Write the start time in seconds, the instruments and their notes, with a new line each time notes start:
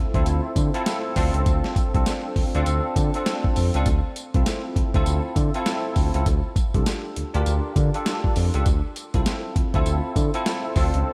Already playing: tine electric piano C4 E4 F4 A4
0.14 analog synth bass D2, tine electric piano C4 E4 F4 A4, kick, closed hi-hat
0.26 analog synth bass D2, closed hi-hat, tambourine
0.56 analog synth bass D3, kick, closed hi-hat, tambourine
0.74 tine electric piano C4 E4 F4 A4, closed hi-hat
0.86 snare, closed hi-hat, tambourine
1.16 analog synth bass D2, tine electric piano C4 D4 F4 A4, kick, open hi-hat, tambourine
1.34 analog synth bass C#2, closed hi-hat
1.46 analog synth bass D2, kick, closed hi-hat, tambourine
1.64 snare
1.76 kick, closed hi-hat, tambourine
1.94 analog synth bass C2, tine electric piano C4 D4 F4 A4, kick, closed hi-hat
2.06 snare, closed hi-hat, tambourine
2.36 analog synth bass D2, kick, open hi-hat
2.55 analog synth bass D2, tine electric piano C4 D4 F4 A4, closed hi-hat
2.66 analog synth bass D2, closed hi-hat, tambourine
2.96 analog synth bass D3, kick, closed hi-hat, tambourine
3.14 tine electric piano C4 D4 F4 A4, closed hi-hat
3.26 snare, closed hi-hat, tambourine
3.44 kick
3.56 analog synth bass F2, open hi-hat, tambourine
3.74 analog synth bass C#2, tine electric piano C4 D4 F4 A4, closed hi-hat
3.86 analog synth bass D2, kick, closed hi-hat, tambourine
4.16 closed hi-hat, tambourine
4.34 analog synth bass C2, tine electric piano C4 E4 F4 A4, kick, closed hi-hat
4.46 snare, closed hi-hat, tambourine
4.76 analog synth bass D2, kick, closed hi-hat
4.94 analog synth bass D2, tine electric piano C4 E4 F4 A4, kick, closed hi-hat
5.06 analog synth bass D2, closed hi-hat, tambourine
5.36 analog synth bass D3, kick, closed hi-hat, tambourine
5.54 tine electric piano C4 E4 F4 A4, closed hi-hat
5.66 snare, closed hi-hat, tambourine
5.96 analog synth bass D2, kick, open hi-hat, tambourine
6.14 analog synth bass C#2, tine electric piano C4 E4 F4 A4, closed hi-hat
6.26 analog synth bass D2, kick, closed hi-hat, tambourine
6.56 kick, closed hi-hat, tambourine
6.74 analog synth bass C2, tine electric piano D4 F4 G4 A4, kick, closed hi-hat
6.86 snare, closed hi-hat, tambourine
7.16 analog synth bass D2, closed hi-hat
7.34 analog synth bass D2, tine electric piano D4 F4 G4 A#4, closed hi-hat
7.46 analog synth bass D2, closed hi-hat, tambourine
7.76 analog synth bass D3, kick, closed hi-hat, tambourine
7.94 tine electric piano D4 F4 G4 A4, closed hi-hat
8.06 snare, closed hi-hat, tambourine
8.24 kick
8.36 analog synth bass F2, open hi-hat, tambourine
8.54 analog synth bass C#2, tine electric piano D4 F4 G4 A4, closed hi-hat
8.66 analog synth bass D2, kick, closed hi-hat, tambourine
8.96 closed hi-hat, tambourine
9.14 analog synth bass C2, tine electric piano C4 E4 F4 A4, kick, closed hi-hat
9.26 snare, closed hi-hat, tambourine
9.56 analog synth bass D2, kick, closed hi-hat
9.74 analog synth bass D2, tine electric piano C4 E4 F4 A4, kick, closed hi-hat
9.86 analog synth bass D2, closed hi-hat, tambourine
10.16 analog synth bass D3, kick, closed hi-hat, tambourine
10.34 tine electric piano C4 E4 F4 A4, closed hi-hat
10.46 snare, closed hi-hat, tambourine
10.76 analog synth bass D2, tine electric piano C4 D4 F4 A4, kick, open hi-hat, tambourine
10.94 analog synth bass C#2, closed hi-hat